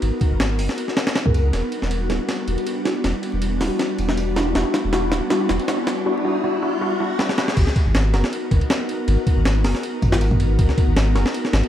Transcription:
0.02 sub bass G#1, ride
0.21 kick, ride
0.31 sub bass G#1
0.40 snare, ride
0.59 sub bass F#1, open hi-hat
0.69 snare
0.78 ride
0.88 snare
0.97 snare, ride
1.07 snare, ride
1.15 snare, ride
1.26 sub bass C#2, synth stab B3 F#4 G#4 A#4, kick
1.34 sub bass C#2, ride
1.53 sub bass E1, snare, ride, riser
1.72 ride
1.82 sub bass E1, snare
1.91 ride
2.10 sub bass D1, synth stab G3 D4 E4 F#4, snare, ride
2.29 snare, ride
2.47 sub bass E1, ride
2.58 ride
2.66 ride
2.85 synth stab G3 D4 E4 F#4, snare, ride
3.04 sub bass E1, snare, ride
3.23 ride
3.33 sub bass E1
3.42 ride
3.61 sub bass D1, synth stab G3 D4 E4 F#4, snare, open hi-hat
3.79 snare, ride
3.98 sub bass E1, ride
4.09 snare
4.17 ride
4.36 synth stab G3 D4 E4 F#4, snare, ride
4.55 sub bass E1, synth stab G3 D4 E4 F#4, snare, ride
4.74 snare, ride
4.84 sub bass E1
4.93 synth stab G3 D4 E4 F#4, snare, ride
5.12 sub bass D1, snare, ride
5.30 synth stab G3 D4 E4 F#4, snare, ride
5.49 sub bass E1, snare, ride
5.60 ride
5.68 synth stab G3 D4 E4 F#4, snare, ride
5.87 snare, ride
6.06 synth stab G3 D4 E4 F#4
6.25 synth stab G3 D4 E4 F#4
6.44 synth stab G3 D4 E4 F#4
6.62 synth stab G3 D4 E4 F#4
6.81 synth stab G3 D4 E4 F#4
7.00 synth stab G3 D4 E4 F#4
7.19 synth stab G3 D4 E4 F#4, snare
7.29 snare
7.38 synth stab G3 D4 E4 F#4, snare
7.48 snare
7.57 sub bass G#1, kick, crash, ride
7.67 snare
7.76 kick, ride
7.86 sub bass G#1
7.95 snare, ride
8.13 sub bass F#1, synth stab B3 F#4 G#4 A#4, snare, ride
8.24 snare
8.33 ride
8.51 sub bass G#1, kick, ride
8.61 ride
8.70 snare, ride
8.89 ride
9.08 sub bass G#1, ride
9.27 kick, ride
9.37 sub bass G#1
9.45 snare, ride
9.64 sub bass F#1, synth stab B3 F#4 G#4 A#4, snare, open hi-hat
9.75 snare
9.83 ride
10.02 sub bass G#1, kick, ride
10.12 snare
10.21 ride
10.31 kick
10.40 ride
10.59 sub bass G#1, kick, ride
10.69 snare
10.78 kick, ride
10.88 sub bass G#1
10.97 snare, ride
11.15 sub bass F#1, synth stab B3 F#4 G#4 A#4, snare, ride
11.26 snare
11.34 ride
11.45 snare
11.53 sub bass G#1, snare, ride
11.63 ride

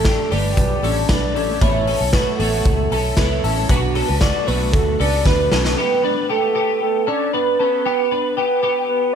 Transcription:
Already playing: fingered electric bass A1, twelve-string acoustic guitar A3 D4 G4, soft synth lead A4
0.05 clean electric guitar D4 G4, kick, snare, closed hi-hat
0.31 fingered electric bass G1, twelve-string acoustic guitar G3 A3 D4 G4, clean electric guitar B3 G4, soft synth lead D5, open hi-hat
0.57 fingered electric bass B1, kick, closed hi-hat
0.82 fingered electric bass A1, twelve-string acoustic guitar G3 A3 D4 G4, clean electric guitar C#4 A4, open hi-hat
1.08 fingered electric bass B1, twelve-string acoustic guitar G3 A3 D4 G4, clean electric guitar D4 B4, soft synth lead D5, kick, snare, closed hi-hat
1.35 fingered electric bass A1, clean electric guitar C#4 A4, open hi-hat
1.47 twelve-string acoustic guitar A3 D4 G4
1.60 fingered electric bass A1, twelve-string acoustic guitar A3 B3 E4 A4 C#5, clean electric guitar A3 E4, soft synth lead C#5, kick, closed hi-hat
1.87 clean electric guitar C#4 A4, open hi-hat
2.00 fingered electric bass B1, twelve-string acoustic guitar E4 A4 C#5
2.13 clean electric guitar A3 F#4, soft synth lead B4, kick, snare, closed hi-hat
2.39 fingered electric bass A1, clean electric guitar A3 F#4, twelve-string acoustic guitar B3 E4 A4 C#5, soft synth lead A4, open hi-hat
2.65 fingered electric bass C#2, kick, closed hi-hat
2.90 fingered electric bass B1, twelve-string acoustic guitar B3 E4 A4 C#5, clean electric guitar C#4 A4, open hi-hat
3.17 fingered electric bass C#2, twelve-string acoustic guitar B3 E4 A4 C#5, clean electric guitar E4 B4, kick, snare, closed hi-hat
3.44 fingered electric bass A1, clean electric guitar C#4 A4, open hi-hat
3.56 twelve-string acoustic guitar E4 A4 C#5
3.69 fingered electric bass B1, twelve-string acoustic guitar B2 F#3 B3 D4 F#4 B4, clean electric guitar B3 F#4, kick, closed hi-hat
3.95 clean electric guitar C#4 A4, open hi-hat
4.08 fingered electric bass C#2, twelve-string acoustic guitar B3 D4 F#4 B4
4.21 clean electric guitar B3 F#4, soft synth lead D5, kick, snare, closed hi-hat
4.47 fingered electric bass B1, clean electric guitar A3 F#4, twelve-string acoustic guitar B3 D4 F#4 B4, soft synth lead B4, open hi-hat
4.73 fingered electric bass D2, soft synth lead A4, kick, closed hi-hat
4.99 fingered electric bass C#2, twelve-string acoustic guitar B3 D4 F#4 B4, clean electric guitar C#4 A4, soft synth lead D5, open hi-hat
5.25 fingered electric bass D2, twelve-string acoustic guitar B3 D4 F#4 B4, clean electric guitar D4 B4, soft synth lead B4, kick, snare
5.52 fingered electric bass B1, clean electric guitar C#4 A4, snare
5.63 twelve-string acoustic guitar B3 D4 F#4 B4, snare
5.77 clean electric guitar B3 G4, soft synth lead B4
6.04 clean electric guitar D4 B4
6.29 clean electric guitar B3 G4, soft synth lead A4
6.55 clean electric guitar B3 G4
6.82 soft synth lead A4
7.07 clean electric guitar C#4 A4, soft synth lead D5
7.33 clean electric guitar D4 B4, soft synth lead B4
7.59 clean electric guitar C#4 A4, soft synth lead B4
7.85 clean electric guitar B3 G4
8.11 clean electric guitar D4 B4
8.36 clean electric guitar B3 G4, soft synth lead B4
8.63 clean electric guitar B3 G4
8.89 soft synth lead B4

